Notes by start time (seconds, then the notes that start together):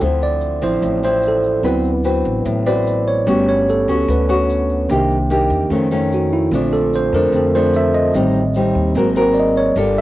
0.00 D2 D3 F3 C4 E4, shaker
0.21 D5, shaker
0.41 shaker
0.61 A1 F3 C4 E4 C5, shaker
0.82 A1 A2, shaker
1.03 F3 C4 E4 C5, shaker
1.23 shaker
1.28 A4
1.43 shaker
1.63 D2 D3 F#3 B3 C4 E4 F#4 B4, shaker
1.67 B4
1.84 shaker
2.04 C4 F#4 B4, shaker
2.25 A1, shaker
2.45 A1 A2, shaker
2.66 C4 F#4 B4 D5, shaker
2.87 shaker
3.07 C#5, shaker
3.26 G1 G3 A3 B3 C#4 F#4, shaker
3.48 C#5, shaker
3.69 A4, shaker
3.88 D2 B3 C#4 F#4, shaker
4.08 D2 D3 B4, shaker
4.29 B3 C#4 F#4, shaker
4.50 shaker
4.69 shaker
4.89 C2 C3 D#3 A#3 D4 D#4 G4, shaker
5.10 shaker
5.30 A#3 D#4 G4, shaker
5.50 E2, shaker
5.69 F2 D#3 A3 C#4, shaker
5.91 D#3 A3 C#4, shaker
6.12 F#4, shaker
6.32 E4, shaker
6.51 A#1 A#2 D3 F3 A3 C4 D4 F4, shaker
6.73 A4, shaker
6.93 C5, shaker
7.12 F2 F3 A3 D4 A#4, shaker
7.32 F2 D3 A3 C4, shaker
7.36 A4
7.53 F3 A3 D4 C5, shaker
7.73 E5, shaker
7.94 D#5, shaker
8.14 A1 A2 D#3 G3 C4 D#4, shaker
8.34 shaker
8.54 G3 C4 D#4, shaker
8.74 D#2, shaker
8.94 G#1 F#3 G#3 A#3 C4 F#4 A#4, shaker
9.15 C4 F#4 A#4, shaker
9.34 D5, shaker
9.40 D#5
9.56 C#5, shaker
9.75 G1 G3 A#3 F4 A4 D5, shaker
9.96 shaker